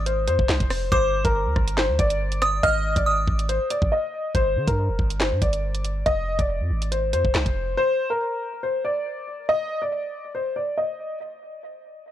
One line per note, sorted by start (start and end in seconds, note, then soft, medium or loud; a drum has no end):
0.00 0.29 G#1 loud
0.00 0.88 D#6 medium
0.06 0.26 C5 medium
0.06 closed hi-hat medium
0.28 0.38 F2 loud
0.28 0.88 C5 medium
0.28 closed hi-hat medium
0.39 0.48 F1 loud
0.39 kick loud
0.49 0.60 C2 loud
0.49 snare loud
0.49 clap loud
0.60 0.91 F1 loud
0.60 kick medium
0.60 closed hi-hat medium
0.70 cross-stick loud
0.70 open hi-hat medium
0.92 1.23 G1 loud
0.92 1.23 C5 loud
0.92 1.32 D6 loud
0.92 kick loud
0.92 closed hi-hat medium
1.25 1.48 G1 loud
1.25 1.74 A#4 medium
1.25 kick medium
1.25 closed hi-hat medium
1.46 1.56 D2 loud
1.56 1.90 G1 loud
1.56 kick medium
1.56 cross-stick medium
1.68 closed hi-hat medium
1.78 1.97 C5 medium
1.78 snare loud
1.78 clap medium
1.89 1.98 D2 loud
1.99 2.61 G1 loud
1.99 2.59 D5 medium
1.99 kick loud
1.99 closed hi-hat medium
2.10 closed hi-hat medium
2.32 closed hi-hat medium
2.42 2.62 D#6 medium
2.42 cross-stick loud
2.42 closed hi-hat medium
2.63 2.95 G#1 loud
2.63 2.94 D#5 loud
2.63 3.04 F6 loud
2.63 kick loud
2.63 closed hi-hat medium
2.96 3.26 G#1 loud
2.96 3.46 D5 medium
2.96 kick loud
2.96 closed hi-hat medium
3.06 4.31 D#6 medium
3.28 3.59 G#1 loud
3.28 kick medium
3.39 closed hi-hat medium
3.49 3.69 C5 medium
3.49 closed hi-hat medium
3.70 3.90 D5 medium
3.70 closed hi-hat medium
3.82 3.92 G#1 loud
3.82 kick loud
3.92 4.32 D#5 medium
4.35 4.58 G1 loud
4.35 4.66 C5 medium
4.35 kick loud
4.35 closed hi-hat medium
4.56 4.67 D3 loud
4.67 4.90 G2 loud
4.67 5.17 A#4 medium
4.67 kick medium
4.67 closed hi-hat medium
4.89 4.99 F1 loud
4.99 5.33 G1 loud
4.99 kick medium
5.10 closed hi-hat medium
5.20 5.40 C5 medium
5.20 snare loud
5.20 clap medium
5.32 5.41 G2 loud
5.42 6.04 G1 loud
5.42 6.02 D5 medium
5.42 kick loud
5.42 closed hi-hat medium
5.53 closed hi-hat medium
5.75 closed hi-hat medium
5.85 closed hi-hat medium
6.06 6.38 F1 loud
6.06 6.37 D#5 loud
6.06 kick loud
6.06 closed hi-hat medium
6.39 6.62 F1 loud
6.39 6.89 D5 medium
6.39 kick medium
6.39 closed hi-hat medium
6.60 6.70 F2 loud
6.70 7.15 G#1 loud
6.82 closed hi-hat medium
6.92 7.11 C5 medium
6.92 closed hi-hat medium
7.13 7.24 F2 medium
7.13 7.74 C5 medium
7.13 closed hi-hat medium
7.25 7.34 F1 loud
7.25 kick loud
7.35 7.45 C2 loud
7.35 snare loud
7.35 clap loud
7.46 7.76 F1 loud
7.46 kick medium
7.46 closed hi-hat medium
7.77 8.08 C5 loud
8.10 8.60 A#4 medium
8.63 8.83 C5 medium
8.85 9.45 D5 medium
9.49 9.80 D#5 loud
9.82 10.32 D5 medium
10.35 10.54 C5 medium
10.56 10.76 D5 medium
10.78 11.18 D#5 medium